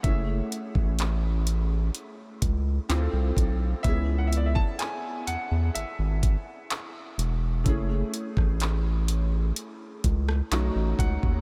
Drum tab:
HH |x-x-x-x-x-x-x-x-|x-x-x-x-x-x-x-x-|x-x-x-x-x-x-x-x-|
CP |----x-------x---|----x-------x---|----x-------x---|
SD |----------------|----------------|---r-------r----|
BD |o--o------o---o-|o--o------o-----|o--o------o---oo|